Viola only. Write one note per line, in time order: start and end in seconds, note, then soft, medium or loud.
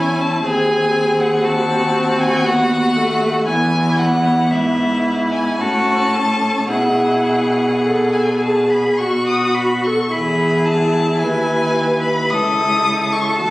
0.00 0.42 C#4 medium
0.46 1.43 C4 soft
1.45 2.46 C4 medium
2.45 2.97 B3 medium
2.96 3.48 A3 medium
3.46 5.59 B3 medium
5.60 6.71 C#4 medium
6.70 7.73 E4 soft
7.85 8.44 A4 medium
8.43 9.01 G#4 soft
8.99 9.88 F#4 medium
9.86 10.14 A4 medium
10.14 12.27 E4 soft
12.31 13.37 E4 soft
13.40 13.50 F#4 medium